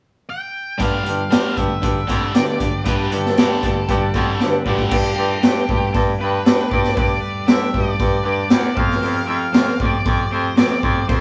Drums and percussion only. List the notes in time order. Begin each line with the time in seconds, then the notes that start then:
0.80 kick, closed hi-hat
1.06 closed hi-hat
1.32 snare, closed hi-hat
1.57 kick, closed hi-hat
1.83 kick, closed hi-hat
2.09 kick, closed hi-hat
2.35 snare, closed hi-hat
2.60 kick, closed hi-hat
2.85 kick, closed hi-hat
3.12 closed hi-hat
3.26 snare
3.38 snare, closed hi-hat
3.63 kick, closed hi-hat
3.89 kick, closed hi-hat
4.14 kick, closed hi-hat
4.40 snare
4.66 kick
4.79 kick
4.91 kick, crash
5.43 snare, open hi-hat
5.69 kick
5.94 kick, open hi-hat
6.46 snare, open hi-hat
6.71 kick
6.84 snare
6.97 kick, open hi-hat
7.48 snare, open hi-hat
7.74 kick
7.99 kick, open hi-hat
8.50 snare, open hi-hat
8.77 kick
8.91 snare
9.03 open hi-hat
9.54 snare, open hi-hat
9.80 kick
10.05 kick, open hi-hat
10.57 snare, open hi-hat
10.83 kick
11.09 kick, open hi-hat